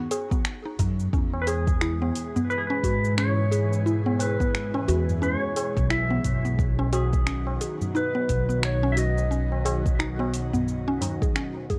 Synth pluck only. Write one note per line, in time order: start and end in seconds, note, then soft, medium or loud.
0.00 0.10 B3 medium
0.11 0.23 G#4 medium
0.31 0.44 B3 medium
0.65 0.78 D#4 medium
0.79 0.98 D#4 medium
1.13 1.32 C#4 medium
1.47 1.67 G#4 medium
1.82 2.01 E4 medium
2.02 2.15 B3 medium
2.36 2.49 B3 medium
2.70 2.83 C#4 loud
2.84 2.95 F#4 medium
3.18 3.37 C#4 medium
3.52 3.71 G#4 medium
3.86 4.05 E4 medium
4.06 4.19 B3 medium
4.40 4.54 B3 medium
4.74 4.87 C#4 loud
4.88 5.00 F#4 medium
5.22 5.41 C#4 medium
5.56 5.76 G#4 medium
5.90 6.10 E4 medium
6.11 6.24 B3 medium
6.45 6.58 B3 medium
6.79 6.91 C#4 loud
6.93 7.04 F#4 medium
7.27 7.46 C#4 medium
7.61 7.80 G#4 medium
7.95 8.14 D#4 medium
8.15 8.28 B3 medium
8.49 8.62 B3 medium
8.83 8.96 C#4 loud
8.97 9.09 F#4 medium
9.31 9.50 C#4 medium
9.65 9.85 G#4 medium
9.99 10.19 D#4 medium
10.19 10.33 B3 medium
10.54 10.67 B3 medium
10.88 11.00 C#4 loud
11.02 11.20 D#4 medium
11.22 11.35 G#4 medium
11.36 11.47 C#4 medium
11.70 11.79 G#4 loud